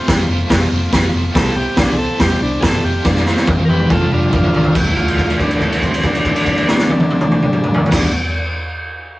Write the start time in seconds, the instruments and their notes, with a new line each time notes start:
0.07 picked electric bass F1, overdriven electric guitar F3 A3 C4 F4, kick, snare, open hi-hat, tambourine
0.28 picked electric bass F1, overdriven electric guitar A3 C4 F4, tambourine
0.32 overdriven electric guitar F3
0.49 picked electric bass F1, overdriven electric guitar F2 C3 F3 A3 C4, kick, snare, open hi-hat, tambourine
0.53 overdriven electric guitar F4
0.70 picked electric bass F1, overdriven electric guitar A3 C4 F4, tambourine
0.74 overdriven electric guitar F3
0.91 picked electric bass F1, overdriven electric guitar F2 C3 F3 A3 C4 F4, kick, snare, open hi-hat, tambourine
1.12 picked electric bass F1, overdriven electric guitar F3 A3 C4 F4, tambourine
1.33 picked electric bass C2, overdriven electric guitar C3 G3 C4 E4 G4 C5, transistor combo organ A4, kick, snare, open hi-hat
1.56 overdriven electric guitar C4 E4 G4 C5, transistor combo organ G4
1.77 picked electric bass C2, overdriven electric guitar C4 E4 G4 C5, transistor combo organ D4, kick, snare, open hi-hat
1.93 transistor combo organ G#4, overdriven electric guitar C5
1.98 overdriven electric guitar C4 E4 G4, transistor combo organ A4
2.19 picked electric bass E1, overdriven electric guitar C3 G3 C4 E4 G4 C5, transistor combo organ G4, kick, snare, open hi-hat
2.40 picked electric bass C2, overdriven electric guitar C4 E4 G4 C5, transistor combo organ D4
2.61 picked electric bass F#1, overdriven electric guitar C3 G3 C4 E4 G4 C5, transistor combo organ G#4, kick, snare, open hi-hat
2.65 transistor combo organ A4
2.81 picked electric bass F1, overdriven electric guitar F2 C3 F3 A3 C4 F4, transistor combo organ G4
3.03 picked electric bass F1, overdriven electric guitar F2 C3 F3 A3 C4 F4, transistor combo organ D4, kick, snare
3.16 snare
3.25 overdriven electric guitar F3 A3 C4 F4, transistor combo organ C4, snare
3.36 snare
3.46 picked electric bass F1, overdriven electric guitar F3 A3 C4, kick, high tom
3.51 overdriven electric guitar F4
3.59 high tom
3.65 picked electric bass F1, overdriven electric guitar F4, transistor combo organ G4 A#4, high tom
3.70 overdriven electric guitar F3 A3 C4, transistor combo organ B4
3.80 mid tom
3.88 picked electric bass F1, overdriven electric guitar F2 C3 F3 A3 C4 F4, transistor combo organ F4 A4, kick, mid tom
4.01 mid tom
4.10 picked electric bass F1, overdriven electric guitar F3 A3 C4 F4, transistor combo organ D4 F4, mid tom
4.22 mid tom
4.32 picked electric bass F1, overdriven electric guitar F2 C3 F3 A3 C4, transistor combo organ D4 F4, kick, mid tom
4.36 overdriven electric guitar F4
4.44 floor tom
4.53 picked electric bass C2, overdriven electric guitar A3 C4 F4, floor tom
4.58 overdriven electric guitar F3
4.64 floor tom
4.75 picked electric bass D1, overdriven electric guitar D2 A2 D3, kick, crash
4.79 overdriven electric guitar A3 F#4
4.93 transistor combo organ E4
4.97 transistor combo organ F4, kick, crash
5.08 crash
5.18 kick, crash
5.30 crash
5.40 transistor combo organ D4, kick, crash
5.51 crash
5.61 transistor combo organ A3, kick, crash
5.72 crash
5.82 transistor combo organ C4, kick, crash
5.94 crash
6.04 transistor combo organ D4, kick, crash
6.15 crash
6.25 kick, crash
6.36 crash
6.46 kick, crash
6.57 crash
6.68 snare
6.78 snare
6.89 high tom
7.00 high tom
7.10 high tom
7.21 mid tom
7.32 mid tom
7.42 mid tom
7.53 mid tom
7.64 mid tom
7.74 floor tom
7.86 floor tom
7.91 picked electric bass D1, overdriven electric guitar D2 A2 D3 A3 F#4, transistor combo organ D4, kick, snare, crash